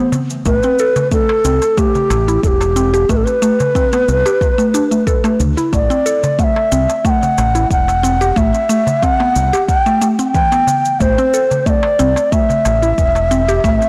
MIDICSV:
0, 0, Header, 1, 6, 480
1, 0, Start_track
1, 0, Tempo, 659341
1, 332, Time_signature, 4, 2, 24, 8
1, 10111, End_track
2, 0, Start_track
2, 0, Title_t, "Bansuri"
2, 0, Program_c, 0, 73
2, 337, Note_on_c, 0, 71, 102
2, 785, Note_off_c, 0, 71, 0
2, 821, Note_on_c, 0, 69, 98
2, 1299, Note_on_c, 0, 67, 95
2, 1310, Note_off_c, 0, 69, 0
2, 1771, Note_off_c, 0, 67, 0
2, 1776, Note_on_c, 0, 69, 83
2, 1801, Note_on_c, 0, 67, 90
2, 1808, Note_off_c, 0, 69, 0
2, 2257, Note_on_c, 0, 71, 85
2, 2268, Note_off_c, 0, 67, 0
2, 2306, Note_on_c, 0, 69, 72
2, 2317, Note_off_c, 0, 71, 0
2, 2361, Note_on_c, 0, 71, 90
2, 2372, Note_off_c, 0, 69, 0
2, 3932, Note_off_c, 0, 71, 0
2, 4177, Note_on_c, 0, 74, 90
2, 4657, Note_on_c, 0, 78, 90
2, 4668, Note_off_c, 0, 74, 0
2, 4687, Note_on_c, 0, 76, 98
2, 4695, Note_off_c, 0, 78, 0
2, 5141, Note_on_c, 0, 79, 90
2, 5152, Note_off_c, 0, 76, 0
2, 5169, Note_on_c, 0, 78, 98
2, 5176, Note_off_c, 0, 79, 0
2, 5614, Note_off_c, 0, 78, 0
2, 5618, Note_on_c, 0, 78, 94
2, 6097, Note_on_c, 0, 76, 97
2, 6108, Note_off_c, 0, 78, 0
2, 6575, Note_on_c, 0, 78, 104
2, 6586, Note_off_c, 0, 76, 0
2, 7045, Note_off_c, 0, 78, 0
2, 7050, Note_on_c, 0, 79, 113
2, 7317, Note_off_c, 0, 79, 0
2, 7532, Note_on_c, 0, 79, 109
2, 8013, Note_on_c, 0, 72, 90
2, 8024, Note_off_c, 0, 79, 0
2, 8491, Note_on_c, 0, 76, 87
2, 8502, Note_off_c, 0, 72, 0
2, 8515, Note_on_c, 0, 74, 94
2, 8522, Note_off_c, 0, 76, 0
2, 8973, Note_on_c, 0, 76, 104
2, 8984, Note_off_c, 0, 74, 0
2, 10111, Note_off_c, 0, 76, 0
2, 10111, End_track
3, 0, Start_track
3, 0, Title_t, "Synth pluck"
3, 0, Program_c, 1, 84
3, 0, Note_on_c, 1, 59, 76
3, 323, Note_off_c, 1, 59, 0
3, 337, Note_on_c, 1, 57, 87
3, 407, Note_off_c, 1, 57, 0
3, 466, Note_on_c, 1, 60, 87
3, 564, Note_off_c, 1, 60, 0
3, 580, Note_on_c, 1, 69, 76
3, 697, Note_off_c, 1, 69, 0
3, 815, Note_on_c, 1, 57, 78
3, 934, Note_off_c, 1, 57, 0
3, 1056, Note_on_c, 1, 60, 85
3, 1126, Note_off_c, 1, 60, 0
3, 1294, Note_on_c, 1, 57, 103
3, 1647, Note_off_c, 1, 57, 0
3, 1661, Note_on_c, 1, 64, 68
3, 1724, Note_off_c, 1, 64, 0
3, 2010, Note_on_c, 1, 60, 88
3, 2083, Note_off_c, 1, 60, 0
3, 2138, Note_on_c, 1, 67, 91
3, 2246, Note_off_c, 1, 67, 0
3, 2252, Note_on_c, 1, 57, 106
3, 2373, Note_off_c, 1, 57, 0
3, 2491, Note_on_c, 1, 57, 97
3, 2564, Note_off_c, 1, 57, 0
3, 2732, Note_on_c, 1, 60, 78
3, 2853, Note_off_c, 1, 60, 0
3, 2861, Note_on_c, 1, 59, 70
3, 3087, Note_off_c, 1, 59, 0
3, 3100, Note_on_c, 1, 67, 101
3, 3207, Note_off_c, 1, 67, 0
3, 3336, Note_on_c, 1, 57, 90
3, 3439, Note_off_c, 1, 57, 0
3, 3452, Note_on_c, 1, 62, 85
3, 3524, Note_off_c, 1, 62, 0
3, 3577, Note_on_c, 1, 57, 69
3, 3680, Note_off_c, 1, 57, 0
3, 3690, Note_on_c, 1, 69, 70
3, 3805, Note_off_c, 1, 69, 0
3, 3815, Note_on_c, 1, 57, 96
3, 3919, Note_off_c, 1, 57, 0
3, 4057, Note_on_c, 1, 64, 66
3, 4165, Note_off_c, 1, 64, 0
3, 4169, Note_on_c, 1, 57, 80
3, 4243, Note_off_c, 1, 57, 0
3, 4297, Note_on_c, 1, 60, 91
3, 4399, Note_off_c, 1, 60, 0
3, 4410, Note_on_c, 1, 69, 74
3, 4532, Note_off_c, 1, 69, 0
3, 4650, Note_on_c, 1, 57, 79
3, 4772, Note_off_c, 1, 57, 0
3, 4891, Note_on_c, 1, 60, 85
3, 4964, Note_off_c, 1, 60, 0
3, 5130, Note_on_c, 1, 57, 103
3, 5486, Note_off_c, 1, 57, 0
3, 5496, Note_on_c, 1, 64, 70
3, 5562, Note_off_c, 1, 64, 0
3, 5848, Note_on_c, 1, 60, 90
3, 5923, Note_off_c, 1, 60, 0
3, 5977, Note_on_c, 1, 67, 90
3, 6085, Note_off_c, 1, 67, 0
3, 6088, Note_on_c, 1, 57, 104
3, 6210, Note_off_c, 1, 57, 0
3, 6329, Note_on_c, 1, 57, 99
3, 6403, Note_off_c, 1, 57, 0
3, 6572, Note_on_c, 1, 60, 81
3, 6693, Note_off_c, 1, 60, 0
3, 6699, Note_on_c, 1, 59, 70
3, 6926, Note_off_c, 1, 59, 0
3, 6940, Note_on_c, 1, 67, 95
3, 7046, Note_off_c, 1, 67, 0
3, 7179, Note_on_c, 1, 57, 96
3, 7281, Note_off_c, 1, 57, 0
3, 7291, Note_on_c, 1, 57, 91
3, 7364, Note_off_c, 1, 57, 0
3, 7418, Note_on_c, 1, 60, 73
3, 7520, Note_off_c, 1, 60, 0
3, 7532, Note_on_c, 1, 52, 75
3, 7646, Note_off_c, 1, 52, 0
3, 7658, Note_on_c, 1, 59, 77
3, 8000, Note_off_c, 1, 59, 0
3, 8012, Note_on_c, 1, 57, 85
3, 8084, Note_off_c, 1, 57, 0
3, 8141, Note_on_c, 1, 60, 91
3, 8242, Note_off_c, 1, 60, 0
3, 8253, Note_on_c, 1, 69, 70
3, 8373, Note_off_c, 1, 69, 0
3, 8490, Note_on_c, 1, 57, 79
3, 8612, Note_off_c, 1, 57, 0
3, 8730, Note_on_c, 1, 60, 89
3, 8803, Note_off_c, 1, 60, 0
3, 8970, Note_on_c, 1, 57, 93
3, 9325, Note_off_c, 1, 57, 0
3, 9336, Note_on_c, 1, 64, 67
3, 9402, Note_off_c, 1, 64, 0
3, 9690, Note_on_c, 1, 60, 92
3, 9763, Note_off_c, 1, 60, 0
3, 9817, Note_on_c, 1, 67, 95
3, 9925, Note_off_c, 1, 67, 0
3, 9931, Note_on_c, 1, 57, 109
3, 10052, Note_off_c, 1, 57, 0
3, 10111, End_track
4, 0, Start_track
4, 0, Title_t, "Fretless electric bass"
4, 0, Program_c, 2, 35
4, 331, Note_on_c, 2, 33, 81
4, 432, Note_off_c, 2, 33, 0
4, 1050, Note_on_c, 2, 36, 78
4, 1152, Note_off_c, 2, 36, 0
4, 1529, Note_on_c, 2, 33, 87
4, 1723, Note_off_c, 2, 33, 0
4, 1772, Note_on_c, 2, 28, 81
4, 2214, Note_off_c, 2, 28, 0
4, 2252, Note_on_c, 2, 33, 87
4, 2353, Note_off_c, 2, 33, 0
4, 2970, Note_on_c, 2, 36, 73
4, 3072, Note_off_c, 2, 36, 0
4, 3928, Note_on_c, 2, 38, 84
4, 4030, Note_off_c, 2, 38, 0
4, 4171, Note_on_c, 2, 33, 80
4, 4272, Note_off_c, 2, 33, 0
4, 4890, Note_on_c, 2, 36, 74
4, 4991, Note_off_c, 2, 36, 0
4, 5371, Note_on_c, 2, 33, 80
4, 5564, Note_off_c, 2, 33, 0
4, 5609, Note_on_c, 2, 28, 75
4, 6052, Note_off_c, 2, 28, 0
4, 6090, Note_on_c, 2, 33, 79
4, 6191, Note_off_c, 2, 33, 0
4, 6812, Note_on_c, 2, 36, 75
4, 6912, Note_off_c, 2, 36, 0
4, 8012, Note_on_c, 2, 33, 78
4, 8112, Note_off_c, 2, 33, 0
4, 8734, Note_on_c, 2, 36, 72
4, 8833, Note_off_c, 2, 36, 0
4, 9211, Note_on_c, 2, 33, 86
4, 9404, Note_off_c, 2, 33, 0
4, 9451, Note_on_c, 2, 28, 77
4, 9893, Note_off_c, 2, 28, 0
4, 9929, Note_on_c, 2, 33, 77
4, 10031, Note_off_c, 2, 33, 0
4, 10111, End_track
5, 0, Start_track
5, 0, Title_t, "Darbuka"
5, 89, Note_on_c, 9, 64, 88
5, 162, Note_off_c, 9, 64, 0
5, 456, Note_on_c, 9, 62, 43
5, 529, Note_off_c, 9, 62, 0
5, 698, Note_on_c, 9, 64, 89
5, 699, Note_on_c, 9, 62, 34
5, 771, Note_off_c, 9, 64, 0
5, 772, Note_off_c, 9, 62, 0
5, 941, Note_on_c, 9, 63, 76
5, 1014, Note_off_c, 9, 63, 0
5, 1057, Note_on_c, 9, 62, 41
5, 1130, Note_off_c, 9, 62, 0
5, 1179, Note_on_c, 9, 63, 50
5, 1252, Note_off_c, 9, 63, 0
5, 1421, Note_on_c, 9, 64, 74
5, 1494, Note_off_c, 9, 64, 0
5, 1531, Note_on_c, 9, 63, 76
5, 1534, Note_on_c, 9, 62, 44
5, 1604, Note_off_c, 9, 63, 0
5, 1607, Note_off_c, 9, 62, 0
5, 1897, Note_on_c, 9, 62, 58
5, 1899, Note_on_c, 9, 63, 63
5, 1969, Note_off_c, 9, 62, 0
5, 1972, Note_off_c, 9, 63, 0
5, 2382, Note_on_c, 9, 62, 44
5, 2454, Note_off_c, 9, 62, 0
5, 2620, Note_on_c, 9, 62, 34
5, 2623, Note_on_c, 9, 64, 89
5, 2693, Note_off_c, 9, 62, 0
5, 2695, Note_off_c, 9, 64, 0
5, 2862, Note_on_c, 9, 63, 68
5, 2934, Note_off_c, 9, 63, 0
5, 2975, Note_on_c, 9, 62, 40
5, 3048, Note_off_c, 9, 62, 0
5, 3098, Note_on_c, 9, 63, 57
5, 3171, Note_off_c, 9, 63, 0
5, 3452, Note_on_c, 9, 62, 43
5, 3525, Note_off_c, 9, 62, 0
5, 3820, Note_on_c, 9, 63, 62
5, 3893, Note_off_c, 9, 63, 0
5, 3933, Note_on_c, 9, 64, 79
5, 4006, Note_off_c, 9, 64, 0
5, 4302, Note_on_c, 9, 62, 40
5, 4375, Note_off_c, 9, 62, 0
5, 4539, Note_on_c, 9, 64, 86
5, 4542, Note_on_c, 9, 62, 30
5, 4612, Note_off_c, 9, 64, 0
5, 4615, Note_off_c, 9, 62, 0
5, 4778, Note_on_c, 9, 63, 65
5, 4851, Note_off_c, 9, 63, 0
5, 4893, Note_on_c, 9, 62, 43
5, 4966, Note_off_c, 9, 62, 0
5, 5020, Note_on_c, 9, 63, 52
5, 5093, Note_off_c, 9, 63, 0
5, 5262, Note_on_c, 9, 64, 81
5, 5335, Note_off_c, 9, 64, 0
5, 5373, Note_on_c, 9, 62, 46
5, 5374, Note_on_c, 9, 63, 70
5, 5446, Note_off_c, 9, 62, 0
5, 5447, Note_off_c, 9, 63, 0
5, 5738, Note_on_c, 9, 63, 57
5, 5739, Note_on_c, 9, 62, 58
5, 5811, Note_off_c, 9, 63, 0
5, 5812, Note_off_c, 9, 62, 0
5, 6223, Note_on_c, 9, 62, 46
5, 6295, Note_off_c, 9, 62, 0
5, 6456, Note_on_c, 9, 64, 85
5, 6462, Note_on_c, 9, 62, 34
5, 6529, Note_off_c, 9, 64, 0
5, 6535, Note_off_c, 9, 62, 0
5, 6697, Note_on_c, 9, 63, 63
5, 6769, Note_off_c, 9, 63, 0
5, 6814, Note_on_c, 9, 62, 43
5, 6887, Note_off_c, 9, 62, 0
5, 6952, Note_on_c, 9, 63, 52
5, 7025, Note_off_c, 9, 63, 0
5, 7296, Note_on_c, 9, 62, 48
5, 7369, Note_off_c, 9, 62, 0
5, 7661, Note_on_c, 9, 63, 62
5, 7734, Note_off_c, 9, 63, 0
5, 7769, Note_on_c, 9, 64, 79
5, 7842, Note_off_c, 9, 64, 0
5, 8140, Note_on_c, 9, 62, 51
5, 8212, Note_off_c, 9, 62, 0
5, 8379, Note_on_c, 9, 62, 33
5, 8381, Note_on_c, 9, 64, 73
5, 8452, Note_off_c, 9, 62, 0
5, 8454, Note_off_c, 9, 64, 0
5, 8611, Note_on_c, 9, 63, 75
5, 8684, Note_off_c, 9, 63, 0
5, 8733, Note_on_c, 9, 62, 55
5, 8805, Note_off_c, 9, 62, 0
5, 8854, Note_on_c, 9, 63, 58
5, 8927, Note_off_c, 9, 63, 0
5, 9098, Note_on_c, 9, 64, 74
5, 9171, Note_off_c, 9, 64, 0
5, 9210, Note_on_c, 9, 62, 49
5, 9211, Note_on_c, 9, 63, 68
5, 9283, Note_off_c, 9, 62, 0
5, 9284, Note_off_c, 9, 63, 0
5, 9575, Note_on_c, 9, 62, 57
5, 9579, Note_on_c, 9, 63, 54
5, 9648, Note_off_c, 9, 62, 0
5, 9652, Note_off_c, 9, 63, 0
5, 10061, Note_on_c, 9, 62, 53
5, 10111, Note_off_c, 9, 62, 0
5, 10111, End_track
6, 0, Start_track
6, 0, Title_t, "Drums"
6, 92, Note_on_c, 9, 69, 73
6, 165, Note_off_c, 9, 69, 0
6, 219, Note_on_c, 9, 69, 29
6, 292, Note_off_c, 9, 69, 0
6, 332, Note_on_c, 9, 36, 91
6, 332, Note_on_c, 9, 69, 42
6, 405, Note_off_c, 9, 36, 0
6, 405, Note_off_c, 9, 69, 0
6, 458, Note_on_c, 9, 69, 30
6, 531, Note_off_c, 9, 69, 0
6, 573, Note_on_c, 9, 69, 72
6, 646, Note_off_c, 9, 69, 0
6, 699, Note_on_c, 9, 69, 33
6, 772, Note_off_c, 9, 69, 0
6, 812, Note_on_c, 9, 36, 95
6, 812, Note_on_c, 9, 69, 37
6, 885, Note_off_c, 9, 36, 0
6, 885, Note_off_c, 9, 69, 0
6, 1053, Note_on_c, 9, 69, 73
6, 1126, Note_off_c, 9, 69, 0
6, 1179, Note_on_c, 9, 69, 31
6, 1252, Note_off_c, 9, 69, 0
6, 1292, Note_on_c, 9, 36, 94
6, 1293, Note_on_c, 9, 69, 43
6, 1365, Note_off_c, 9, 36, 0
6, 1366, Note_off_c, 9, 69, 0
6, 1421, Note_on_c, 9, 69, 29
6, 1494, Note_off_c, 9, 69, 0
6, 1534, Note_on_c, 9, 69, 71
6, 1606, Note_off_c, 9, 69, 0
6, 1664, Note_on_c, 9, 69, 31
6, 1736, Note_off_c, 9, 69, 0
6, 1772, Note_on_c, 9, 36, 100
6, 1775, Note_on_c, 9, 69, 45
6, 1845, Note_off_c, 9, 36, 0
6, 1847, Note_off_c, 9, 69, 0
6, 1900, Note_on_c, 9, 69, 29
6, 1973, Note_off_c, 9, 69, 0
6, 2012, Note_on_c, 9, 69, 74
6, 2085, Note_off_c, 9, 69, 0
6, 2142, Note_on_c, 9, 69, 31
6, 2215, Note_off_c, 9, 69, 0
6, 2252, Note_on_c, 9, 36, 94
6, 2253, Note_on_c, 9, 69, 44
6, 2325, Note_off_c, 9, 36, 0
6, 2326, Note_off_c, 9, 69, 0
6, 2380, Note_on_c, 9, 69, 29
6, 2453, Note_off_c, 9, 69, 0
6, 2492, Note_on_c, 9, 69, 73
6, 2565, Note_off_c, 9, 69, 0
6, 2621, Note_on_c, 9, 69, 32
6, 2693, Note_off_c, 9, 69, 0
6, 2731, Note_on_c, 9, 36, 98
6, 2735, Note_on_c, 9, 69, 39
6, 2804, Note_off_c, 9, 36, 0
6, 2808, Note_off_c, 9, 69, 0
6, 2859, Note_on_c, 9, 69, 31
6, 2932, Note_off_c, 9, 69, 0
6, 2974, Note_on_c, 9, 69, 74
6, 3046, Note_off_c, 9, 69, 0
6, 3103, Note_on_c, 9, 69, 30
6, 3175, Note_off_c, 9, 69, 0
6, 3211, Note_on_c, 9, 36, 98
6, 3216, Note_on_c, 9, 69, 43
6, 3283, Note_off_c, 9, 36, 0
6, 3289, Note_off_c, 9, 69, 0
6, 3343, Note_on_c, 9, 69, 26
6, 3415, Note_off_c, 9, 69, 0
6, 3454, Note_on_c, 9, 69, 71
6, 3527, Note_off_c, 9, 69, 0
6, 3580, Note_on_c, 9, 69, 30
6, 3653, Note_off_c, 9, 69, 0
6, 3690, Note_on_c, 9, 36, 97
6, 3694, Note_on_c, 9, 69, 42
6, 3763, Note_off_c, 9, 36, 0
6, 3766, Note_off_c, 9, 69, 0
6, 3819, Note_on_c, 9, 69, 29
6, 3892, Note_off_c, 9, 69, 0
6, 3931, Note_on_c, 9, 69, 70
6, 4004, Note_off_c, 9, 69, 0
6, 4060, Note_on_c, 9, 69, 32
6, 4132, Note_off_c, 9, 69, 0
6, 4170, Note_on_c, 9, 36, 94
6, 4172, Note_on_c, 9, 69, 42
6, 4243, Note_off_c, 9, 36, 0
6, 4245, Note_off_c, 9, 69, 0
6, 4301, Note_on_c, 9, 69, 27
6, 4373, Note_off_c, 9, 69, 0
6, 4413, Note_on_c, 9, 69, 71
6, 4486, Note_off_c, 9, 69, 0
6, 4538, Note_on_c, 9, 69, 31
6, 4611, Note_off_c, 9, 69, 0
6, 4650, Note_on_c, 9, 36, 99
6, 4652, Note_on_c, 9, 69, 35
6, 4723, Note_off_c, 9, 36, 0
6, 4725, Note_off_c, 9, 69, 0
6, 4892, Note_on_c, 9, 69, 73
6, 4965, Note_off_c, 9, 69, 0
6, 5021, Note_on_c, 9, 69, 30
6, 5093, Note_off_c, 9, 69, 0
6, 5130, Note_on_c, 9, 36, 91
6, 5133, Note_on_c, 9, 69, 40
6, 5203, Note_off_c, 9, 36, 0
6, 5206, Note_off_c, 9, 69, 0
6, 5261, Note_on_c, 9, 69, 26
6, 5333, Note_off_c, 9, 69, 0
6, 5372, Note_on_c, 9, 69, 70
6, 5445, Note_off_c, 9, 69, 0
6, 5498, Note_on_c, 9, 69, 31
6, 5571, Note_off_c, 9, 69, 0
6, 5610, Note_on_c, 9, 36, 93
6, 5613, Note_on_c, 9, 69, 40
6, 5682, Note_off_c, 9, 36, 0
6, 5686, Note_off_c, 9, 69, 0
6, 5742, Note_on_c, 9, 69, 28
6, 5815, Note_off_c, 9, 69, 0
6, 5856, Note_on_c, 9, 69, 65
6, 5929, Note_off_c, 9, 69, 0
6, 5982, Note_on_c, 9, 69, 29
6, 6055, Note_off_c, 9, 69, 0
6, 6090, Note_on_c, 9, 36, 91
6, 6094, Note_on_c, 9, 69, 40
6, 6163, Note_off_c, 9, 36, 0
6, 6167, Note_off_c, 9, 69, 0
6, 6220, Note_on_c, 9, 69, 27
6, 6293, Note_off_c, 9, 69, 0
6, 6331, Note_on_c, 9, 69, 71
6, 6404, Note_off_c, 9, 69, 0
6, 6460, Note_on_c, 9, 69, 31
6, 6533, Note_off_c, 9, 69, 0
6, 6570, Note_on_c, 9, 36, 90
6, 6573, Note_on_c, 9, 69, 37
6, 6643, Note_off_c, 9, 36, 0
6, 6645, Note_off_c, 9, 69, 0
6, 6812, Note_on_c, 9, 69, 69
6, 6885, Note_off_c, 9, 69, 0
6, 6942, Note_on_c, 9, 69, 28
6, 7015, Note_off_c, 9, 69, 0
6, 7051, Note_on_c, 9, 36, 93
6, 7053, Note_on_c, 9, 69, 38
6, 7123, Note_off_c, 9, 36, 0
6, 7126, Note_off_c, 9, 69, 0
6, 7180, Note_on_c, 9, 69, 26
6, 7253, Note_off_c, 9, 69, 0
6, 7293, Note_on_c, 9, 69, 64
6, 7365, Note_off_c, 9, 69, 0
6, 7418, Note_on_c, 9, 69, 28
6, 7491, Note_off_c, 9, 69, 0
6, 7531, Note_on_c, 9, 36, 89
6, 7532, Note_on_c, 9, 69, 41
6, 7604, Note_off_c, 9, 36, 0
6, 7605, Note_off_c, 9, 69, 0
6, 7659, Note_on_c, 9, 69, 27
6, 7732, Note_off_c, 9, 69, 0
6, 7774, Note_on_c, 9, 69, 68
6, 7847, Note_off_c, 9, 69, 0
6, 7900, Note_on_c, 9, 69, 31
6, 7973, Note_off_c, 9, 69, 0
6, 8011, Note_on_c, 9, 36, 90
6, 8013, Note_on_c, 9, 69, 40
6, 8084, Note_off_c, 9, 36, 0
6, 8085, Note_off_c, 9, 69, 0
6, 8140, Note_on_c, 9, 69, 26
6, 8213, Note_off_c, 9, 69, 0
6, 8254, Note_on_c, 9, 69, 66
6, 8327, Note_off_c, 9, 69, 0
6, 8380, Note_on_c, 9, 69, 28
6, 8453, Note_off_c, 9, 69, 0
6, 8491, Note_on_c, 9, 36, 93
6, 8493, Note_on_c, 9, 69, 36
6, 8563, Note_off_c, 9, 36, 0
6, 8566, Note_off_c, 9, 69, 0
6, 8731, Note_on_c, 9, 69, 65
6, 8804, Note_off_c, 9, 69, 0
6, 8860, Note_on_c, 9, 69, 29
6, 8932, Note_off_c, 9, 69, 0
6, 8971, Note_on_c, 9, 36, 86
6, 8973, Note_on_c, 9, 69, 39
6, 9043, Note_off_c, 9, 36, 0
6, 9045, Note_off_c, 9, 69, 0
6, 9100, Note_on_c, 9, 69, 25
6, 9172, Note_off_c, 9, 69, 0
6, 9212, Note_on_c, 9, 69, 66
6, 9285, Note_off_c, 9, 69, 0
6, 9339, Note_on_c, 9, 69, 30
6, 9412, Note_off_c, 9, 69, 0
6, 9450, Note_on_c, 9, 36, 87
6, 9451, Note_on_c, 9, 69, 41
6, 9523, Note_off_c, 9, 36, 0
6, 9524, Note_off_c, 9, 69, 0
6, 9580, Note_on_c, 9, 69, 27
6, 9653, Note_off_c, 9, 69, 0
6, 9691, Note_on_c, 9, 69, 65
6, 9764, Note_off_c, 9, 69, 0
6, 9820, Note_on_c, 9, 69, 27
6, 9892, Note_off_c, 9, 69, 0
6, 9930, Note_on_c, 9, 36, 95
6, 9933, Note_on_c, 9, 69, 39
6, 10002, Note_off_c, 9, 36, 0
6, 10005, Note_off_c, 9, 69, 0
6, 10060, Note_on_c, 9, 69, 28
6, 10111, Note_off_c, 9, 69, 0
6, 10111, End_track
0, 0, End_of_file